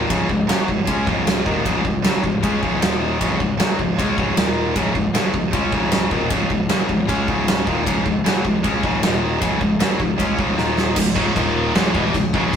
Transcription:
0.10 C#1 C#2 G#2 C#3, kick, ride bell
0.29 C#1 C#2 G#2, kick
0.47 F#1 F#2 C#3 F#3, snare, ride bell
0.68 C#1 C#2 G#2, kick
0.87 C#2 C#3 G#3 C#4, kick, ride bell
1.07 C#1 C#2 G#2 C#3, kick
1.27 snare, ride bell
1.46 D#1 D#2 A#2 D#3, kick
1.65 C#1 C#2 G#2 C#3, kick, ride bell
1.84 C#1 C#2 G#2, kick
2.04 F#1 F#2 C#3 F#3, snare, ride bell
2.24 C#1 C#2 G#2, kick
2.43 C#2 C#3 G#3 C#4, kick, ride bell
2.62 C#1 C#2 G#2 C#3, kick
2.80 D#1 D#2 A#2 D#3, snare, ride bell
3.21 C#1 C#2 G#2 C#3, kick, ride bell
3.39 C#1 C#2 G#2, kick
3.59 F#1 F#2 C#3 F#3, snare, ride bell
3.78 C#1 C#2 G#2, kick
3.98 C#2 C#3 G#3 C#4, kick, ride bell
4.17 C#1 C#2 G#2 C#3, kick
4.36 D#1 D#2 A#2 D#3, snare, ride bell
4.75 C#1 C#2 G#2 C#3, kick, ride bell
4.95 C#1 C#2 G#2, kick
5.13 F#1 F#2 C#3 F#3, snare, ride bell
5.33 C#1 C#2 G#2, kick
5.53 C#2 C#3 G#3 C#4, kick, ride bell
5.72 C#1 C#2 G#2 C#3, kick
5.92 snare, ride bell
6.11 D#1 D#2 A#2 D#3, kick
6.30 C#1 C#2 G#2 C#3, kick, ride bell
6.50 C#1 C#2 G#2, kick
6.69 F#1 F#2 C#3 F#3, snare, ride bell
6.88 C#1 C#2 G#2, kick
7.07 C#2 C#3 G#3 C#4, kick, ride bell
7.27 C#1 C#2 G#2 C#3, kick
7.48 snare, ride bell
7.66 D#1 D#2 A#2 D#3, kick
7.85 C#1 C#2 G#2 C#3, kick, ride bell
8.05 C#1 C#2 G#2, kick
8.24 F#1 F#2 C#3 F#3, snare, ride bell
8.45 C#1 C#2 G#2, kick
8.64 C#2 C#3 G#3 C#4, kick, ride bell
8.83 C#1 C#2 G#2 C#3, kick
9.03 D#1 D#2 A#2 D#3, snare, ride bell
9.40 C#1 C#2 G#2 C#3, kick, ride bell
9.61 C#1 C#2 G#2, kick
9.80 F#1 F#2 C#3 F#3, snare, ride bell
9.99 C#1 C#2 G#2, kick
10.18 C#2 C#3 G#3 C#4, kick, ride bell
10.38 C#1 C#2 G#2 C#3, kick
10.58 D#1 D#2 A#2 D#3, snare
10.77 snare
10.96 C#1 C#2 G#2, kick, crash
11.15 C#1 C#2 G#2 C#3, kick
11.34 D#1 D#2 A#2 D#3, kick, crash
11.74 C#1 C#2 G#2 C#3, snare, crash
11.94 E1 E2 B2 E3, kick
12.13 C#1 C#2 G#2, kick, crash
12.33 C#1 C#2 G#2 C#3, kick
12.52 C#2 G#2

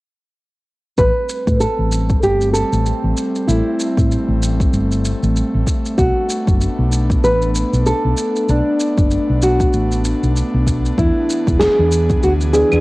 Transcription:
0.97 A1 G3 A3 C4 B4, kick, shaker
1.29 shaker
1.47 A2, kick, shaker
1.60 A4, shaker
1.78 A1
1.92 shaker
2.10 kick, shaker
2.23 G1 G4, shaker
2.41 shaker
2.53 A4, shaker
2.72 A1, shaker
2.86 shaker
3.04 A1
3.17 shaker
3.36 shaker
3.48 A1 E4, shaker
3.80 shaker
3.97 A2, kick, shaker
4.12 shaker
4.28 A1
4.43 shaker
4.60 kick, shaker
4.73 G1, shaker
4.92 shaker
5.05 shaker
5.23 A1, shaker
5.36 shaker
5.54 A1
5.67 kick, shaker
5.85 shaker
5.98 B1 B3 D4 F#4, kick, shaker
6.30 shaker
6.47 F#1, kick, shaker
6.61 shaker
6.78 B1
6.92 shaker
7.10 kick, shaker
7.24 A1 B4, shaker
7.42 shaker
7.55 shaker
7.73 B1, shaker
7.86 A4, shaker
8.04 B1
8.17 shaker
8.36 shaker
8.49 B1 D4, shaker
8.80 shaker
8.98 F#1, kick, shaker
9.11 shaker
9.29 B1
9.42 F#4, shaker
9.60 kick, shaker
9.73 A1, shaker
9.92 shaker
10.05 shaker
10.23 B1, shaker
10.36 shaker
10.54 B1
10.67 kick, shaker
10.85 shaker
10.98 E2 E3 E4 G#4, kick, shaker
11.30 shaker
11.47 E1, kick, shaker
11.59 G#4, snare, shaker
11.79 E2
11.92 shaker
12.10 kick, shaker
12.23 D2 F#4, shaker
12.41 shaker
12.53 E3 B3 D4 G#4, shaker
12.69 E2 E3 B3, claves, shaker
12.73 D4 G#4

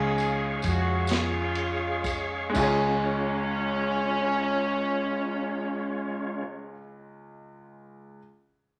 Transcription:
Already playing: C#2 C#3 G#3 C#4 F4 G#4 C#5 F5 C#6
0.18 ride bell, tambourine
0.62 F2, kick, ride bell, tambourine
0.68 F#4
1.07 G#3 C#4, snare, ride bell, tambourine
1.12 F4
1.55 ride bell
2.04 kick, ride bell, tambourine
2.50 G#3 C#4
2.54 C#2 G#3 C#4 F4 C#5, kick, crash, tambourine
2.60 G#4 C#5

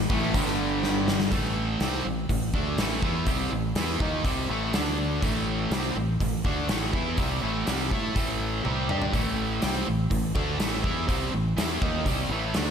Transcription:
0.09 A1 A2 E3 A3, kick
0.34 G1 G2 D3 G3, kick, open hi-hat
0.47 snare
0.83 snare
1.08 snare
1.20 snare
1.31 A1 A2 E3 A3, kick, open hi-hat
1.80 C2 C3 G3 C4, snare, open hi-hat
2.05 A1 A2 E3
2.29 A1 A2 E3, kick, open hi-hat
2.54 D2 D3 A3 D4, kick
2.78 A1 A2 E3 A3, snare, open hi-hat
3.02 E2 E3 B3 E4, kick
3.26 C2 C3 G3 C4, kick, open hi-hat
3.51 A1 A2 E3
3.75 E2 E3 B3 E4, snare, open hi-hat
4.00 D#2 D#3 A#3 D#4, kick
4.24 C2 C3 G3 C4, kick, open hi-hat
4.49 A1 A2 E3 A3
4.73 D2 D3 A3 D4, snare, open hi-hat
5.22 A1 A2 E3 A3, kick, open hi-hat
5.71 C2 C3 G3 C4, snare, open hi-hat
5.95 A1 A2 E3
6.20 A1 A2 E3, kick, open hi-hat
6.45 D2 D3 A3 D4, kick
6.69 A1 A2 E3 A3, snare, open hi-hat
6.93 E2 E3 B3 E4, kick
7.17 C2 C3 G3 C4, kick, open hi-hat
7.42 A1 A2 E3 A3
7.66 C2 C3 G3 C4, snare, open hi-hat
7.91 A2 A3 E4 A4, kick
8.15 A1 A2 E3 A3, kick, open hi-hat
8.64 C2 C3 G3 C4, high tom
8.89 G2 G3 D4 G4, mid tom
9.02 floor tom
9.13 A1 A2 E3 A3, kick, open hi-hat
9.62 C2 C3 G3 C4, snare, open hi-hat
9.86 A1 A2 E3
10.11 A1 A2 E3, kick, open hi-hat
10.35 D2 D3 A3 D4, kick
10.58 A1 A2 E3 A3, snare, open hi-hat
10.83 E2 E3 B3 E4, kick
11.07 C2 C3 G3 C4, kick, open hi-hat
11.32 A1 A2 E3
11.57 E2 E3 B3 E4, snare, open hi-hat
11.81 D#2 D#3 A#3 D#4, kick
12.06 C2 C3 G3 C4, kick, open hi-hat
12.29 A1 A2 E3 A3
12.54 D2 D3 A3 D4, snare, open hi-hat

